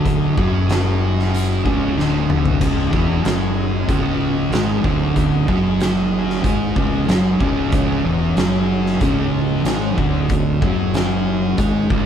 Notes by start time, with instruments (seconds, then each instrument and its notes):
Already playing: fingered electric bass D1, distorted electric guitar D2 D3, string machine C#4 G#4 D#5
0.06 kick, closed hi-hat
0.37 fingered electric bass F#1, distorted electric guitar F#2 F#3, kick
0.70 snare, closed hi-hat
1.19 snare
1.34 closed hi-hat
1.64 fingered electric bass C#1, distorted electric guitar C#2 C#3, kick
1.96 fingered electric bass D1, distorted electric guitar D2 D3, snare
2.30 mid tom
2.45 floor tom
2.60 fingered electric bass C#1, distorted electric guitar C#2 C#3, kick, closed hi-hat, crash
2.91 fingered electric bass E1, distorted electric guitar E2 E3, kick
3.24 fingered electric bass F#1, distorted electric guitar F#2 F#3, snare, closed hi-hat
3.88 fingered electric bass C#1, distorted electric guitar C#2 C#3, kick, closed hi-hat
4.50 fingered electric bass G#1, distorted electric guitar G#2 G#3, snare, closed hi-hat
4.84 fingered electric bass D1, distorted electric guitar D2 D3, kick
5.16 kick, closed hi-hat
5.47 fingered electric bass F#1, distorted electric guitar F#2 F#3, kick
5.80 snare, closed hi-hat
6.30 snare
6.43 fingered electric bass G#1, distorted electric guitar G#2 G#3, kick, closed hi-hat
6.76 fingered electric bass C#1, distorted electric guitar C#2 C#3, kick
7.08 fingered electric bass F#1, distorted electric guitar F#2 F#3, snare, closed hi-hat
7.40 fingered electric bass C#1, distorted electric guitar C#2 C#3, kick
7.72 fingered electric bass C#1, distorted electric guitar C#2 C#3, kick, closed hi-hat
8.04 fingered electric bass E1, distorted electric guitar E2 E3
8.37 fingered electric bass F#1, distorted electric guitar F#2 F#3, snare, closed hi-hat
8.86 snare
9.01 fingered electric bass C#1, distorted electric guitar C#2 C#3, kick, closed hi-hat
9.64 fingered electric bass G#1, distorted electric guitar G#2 G#3, snare, closed hi-hat
9.97 fingered electric bass D1, distorted electric guitar D2 D3, kick
10.29 kick, closed hi-hat
10.62 fingered electric bass F#1, distorted electric guitar F#2 F#3, kick
10.94 snare, closed hi-hat
11.57 fingered electric bass G#1, distorted electric guitar G#2 G#3, kick, closed hi-hat
11.90 fingered electric bass C#1, distorted electric guitar C#2 C#3, kick